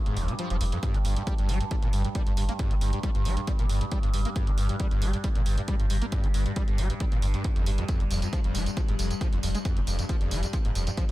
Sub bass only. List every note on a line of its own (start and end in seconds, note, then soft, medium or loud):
0.06 0.16 F1 medium
0.17 0.28 F1 loud
0.50 0.60 F1 medium
0.61 0.72 F1 loud
0.94 1.04 G1 medium
1.05 1.16 G1 loud
1.39 1.48 G1 medium
1.49 1.60 G1 loud
1.83 1.92 G1 medium
1.93 2.04 G1 loud
2.27 2.37 G1 medium
2.37 2.49 G1 loud
2.71 2.81 G1 medium
2.81 2.93 G1 loud
3.15 3.25 G1 medium
3.26 3.37 G1 medium
3.59 3.69 G1 medium
3.70 3.81 G1 loud
4.03 4.13 G1 medium
4.14 4.25 G1 loud
4.47 4.57 G1 medium
4.58 4.69 G1 loud
4.91 5.01 G1 medium
5.02 5.13 G1 loud
5.36 5.45 G1 medium
5.46 5.57 G1 loud
5.80 5.89 G1 medium
5.90 6.01 G1 loud
6.24 6.34 G1 medium
6.34 6.46 G1 loud
6.68 6.78 G1 medium
6.78 6.90 G1 medium
7.12 7.22 G1 medium
7.22 7.34 G1 loud
7.56 7.66 G1 medium
7.67 7.78 G1 loud
8.00 8.10 F1 medium
8.11 8.22 F1 loud
8.44 8.54 F1 medium
8.55 8.66 F1 loud
8.89 8.98 F1 medium
8.99 9.10 F1 medium
9.33 9.43 F1 medium
9.43 9.55 F1 loud
9.77 9.87 F1 medium
9.87 9.99 F1 loud
10.21 10.31 F1 medium
10.31 10.43 F1 loud
10.65 10.75 F1 medium
10.75 10.87 F1 loud